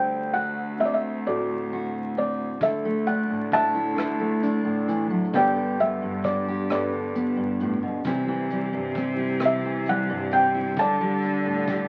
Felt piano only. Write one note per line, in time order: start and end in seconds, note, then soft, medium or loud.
0.00 1.21 C5 medium
0.00 0.35 G5 medium
0.33 0.80 F#5 medium
0.80 0.87 E5 medium
0.85 0.93 D5 medium
0.94 1.26 E5 medium
1.27 2.59 F#4 soft
1.27 2.59 A4 medium
1.27 2.17 D5 medium
2.18 2.64 D5 medium
2.62 3.94 A4 medium
2.62 3.09 E5 medium
3.07 3.52 F#5 medium
3.53 5.31 E5 medium
3.53 5.30 F#5 medium
3.53 5.30 A5 loud
5.35 6.66 B4 medium
5.35 6.23 D5 medium
5.35 5.81 G5 medium
5.80 6.22 E5 medium
6.25 6.70 D5 medium
6.71 8.02 A4 soft
6.71 8.02 B4 soft
6.71 7.68 D5 medium
9.45 9.90 E5 medium
9.89 10.34 F#5 medium
10.33 10.79 G5 medium
10.79 11.88 D5 medium
10.79 11.88 A5 medium